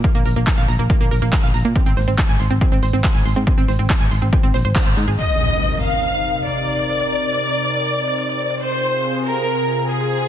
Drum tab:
HH |xxoxxxoxxxoxxxox|xxoxxxoxxxoxxxox|xxoxxooxxxoxxxox|xx-xxx-xxx-xxx-x|
CP |----x-------x---|----x-------x---|----x-------x---|----------------|
BD |o---o---o---o---|o---o---o---o---|o---o---o---o---|----------------|

HH |xx-xxx-xxx-xxx-x|xx-xxx-xxx-xxx-x|
CP |----------------|----------------|
BD |----------------|----------------|